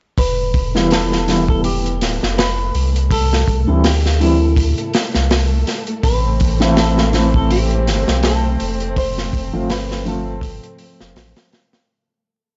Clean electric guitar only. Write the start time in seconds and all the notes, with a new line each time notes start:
0.19 B4
0.92 A4
1.50 A4
1.65 G4
2.38 B4
3.12 A4
3.86 G4
4.22 E4
6.04 B4
6.78 A4
7.36 A4
7.51 G4
8.24 A4
8.98 C5
9.71 B4
10.08 A4